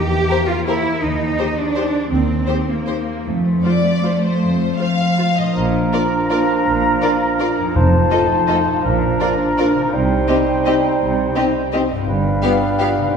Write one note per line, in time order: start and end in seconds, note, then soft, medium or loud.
0.00 0.24 E2 soft
0.00 1.04 E3 soft
0.00 0.29 A#3 soft
0.00 0.10 G4 soft
0.00 0.47 G4 medium
0.11 0.84 G4 soft
0.30 0.66 A#3 soft
0.30 0.38 G4 soft
0.30 0.38 A#4 soft
0.30 0.38 C5 soft
0.48 1.57 C4 soft
0.48 0.67 F4 medium
0.67 1.04 A#3 soft
0.67 1.02 E4 medium
0.67 0.75 G4 soft
0.67 0.76 A#4 soft
0.67 0.75 C5 soft
0.85 1.19 G4 soft
1.02 1.33 D#2 soft
1.02 2.11 D#3 soft
1.02 1.57 D#4 medium
1.20 1.93 G4 soft
1.38 1.75 D#4 soft
1.38 1.47 G4 soft
1.38 1.46 C5 soft
1.38 1.47 C5 soft
1.57 2.28 C4 soft
1.57 2.11 D4 medium
1.75 2.47 D#4 soft
1.75 1.85 G4 soft
1.75 1.83 C5 soft
1.95 3.07 G4 soft
2.11 2.42 D#2 soft
2.11 3.28 D#3 soft
2.11 2.67 C4 medium
2.29 2.67 C4 soft
2.47 2.87 D#4 soft
2.47 2.56 G4 soft
2.47 2.55 C5 soft
2.47 2.56 C5 soft
2.68 3.26 A#3 soft
2.68 3.63 C4 soft
2.88 3.28 D#4 soft
2.88 2.96 G4 soft
2.88 2.96 C5 soft
3.08 3.28 G4 soft
3.26 3.58 F2 soft
3.26 4.41 F3 soft
3.26 5.38 A3 soft
3.45 4.23 C5 soft
3.64 4.04 C4 soft
3.64 3.72 F4 soft
3.64 3.73 C5 soft
3.64 4.19 D5 soft
3.85 4.59 F4 soft
4.04 4.79 C4 soft
4.04 4.12 F4 soft
4.04 4.12 C5 soft
4.23 4.79 C5 soft
4.23 5.37 C5 soft
4.41 4.72 F2 soft
4.41 7.77 F3 soft
4.60 4.98 F4 soft
4.79 5.18 C4 soft
4.79 4.87 F4 soft
4.79 4.87 C5 soft
4.79 5.36 F5 soft
4.99 5.46 F4 soft
5.19 5.57 C4 soft
5.19 5.27 F4 soft
5.19 5.27 C5 soft
5.38 7.68 A#2 soft
5.38 5.57 C5 soft
5.38 5.56 D#5 soft
5.43 7.70 D4 soft
5.47 7.66 F4 soft
5.51 5.86 A#1 medium
5.51 7.71 F3 soft
5.51 7.75 A#4 soft
5.51 7.71 A#5 medium
5.56 5.86 A#2 medium
5.56 7.72 D4 medium
5.56 7.77 A#4 soft
5.93 6.07 A#3 soft
5.93 6.07 D4 soft
5.93 6.01 F4 soft
5.93 6.01 A#4 soft
5.93 6.01 D5 soft
6.30 6.44 A#3 soft
6.30 6.44 D4 soft
6.30 6.38 F4 soft
6.30 6.39 A#4 soft
6.30 6.38 D5 soft
6.66 6.96 A#1 soft
6.66 6.96 A#2 medium
7.02 7.17 A#3 soft
7.02 7.16 D4 soft
7.02 7.10 F4 soft
7.02 7.10 A#4 soft
7.02 7.10 D5 soft
7.39 7.52 A#3 soft
7.39 7.52 D4 soft
7.39 7.48 F4 soft
7.39 7.47 A#4 soft
7.39 7.47 D5 soft
7.58 8.77 F2 soft
7.63 8.79 D#4 soft
7.67 8.74 F4 soft
7.72 8.05 F1 soft
7.72 8.05 F2 medium
7.72 8.85 D#4 medium
7.72 8.84 A4 soft
7.72 8.84 C5 soft
7.72 8.85 A5 soft
7.76 8.26 F2 medium
7.76 9.89 F3 soft
8.11 8.26 A3 soft
8.11 8.25 D#4 soft
8.11 8.19 F4 soft
8.11 8.19 A4 soft
8.11 8.19 D#5 soft
8.48 8.62 A3 soft
8.48 8.62 D#4 soft
8.48 8.56 F4 soft
8.48 8.57 A4 soft
8.48 8.56 D#5 soft
8.66 9.85 A#2 soft
8.71 9.87 D4 soft
8.76 9.90 F4 soft
8.80 9.95 D4 soft
8.80 9.92 A#4 soft
8.84 9.14 A#1 soft
8.84 9.14 A#2 medium
8.84 9.94 A#4 soft
8.84 9.93 A#5 medium
9.20 9.34 A#3 soft
9.20 9.34 D4 soft
9.20 9.29 F4 soft
9.20 9.29 A#4 soft
9.20 9.28 D5 soft
9.58 9.72 A#3 soft
9.58 9.72 D4 soft
9.58 9.66 F4 soft
9.58 9.66 A#4 soft
9.58 9.66 D5 soft
9.75 12.01 C3 soft
9.79 12.03 C4 soft
9.84 12.05 D#4 soft
9.88 12.03 G4 soft
9.93 10.22 C2 medium
9.93 10.22 C3 medium
9.93 11.79 G3 soft
9.93 11.83 D#4 medium
9.93 11.82 C5 soft
9.93 11.79 G5 medium
10.28 10.42 C4 soft
10.28 10.36 C4 soft
10.28 10.42 D#4 soft
10.28 10.36 G4 soft
10.28 10.36 D#5 soft
10.65 10.74 C4 soft
10.65 10.80 C4 soft
10.65 10.80 D#4 soft
10.65 10.74 G4 soft
10.65 10.73 D#5 soft
11.01 11.30 C2 medium
11.01 11.30 C3 medium
11.36 11.44 C4 soft
11.36 11.51 C4 soft
11.36 11.51 D#4 soft
11.36 11.44 G4 soft
11.36 11.44 D#5 medium
11.73 11.81 C4 soft
11.73 11.87 C4 soft
11.73 11.87 D#4 soft
11.73 11.81 G4 soft
11.73 11.81 D#5 soft
11.91 13.07 G2 soft
11.95 13.10 B3 soft
11.99 13.12 F4 soft
12.04 13.09 G4 soft
12.08 12.38 G1 medium
12.08 12.38 G2 medium
12.08 13.17 G3 soft
12.08 13.17 D4 medium
12.08 13.17 B4 soft
12.08 13.17 F5 medium
12.43 12.56 B3 soft
12.43 12.52 B3 soft
12.43 12.57 F4 soft
12.43 12.51 G4 soft
12.43 12.51 F5 soft
12.79 12.89 B3 soft
12.79 12.93 B3 soft
12.79 12.93 F4 medium
12.79 12.87 G4 medium
12.79 12.88 F5 soft
12.97 13.17 C3 soft
13.02 13.17 C4 soft
13.06 13.17 D#4 soft
13.11 13.17 G4 soft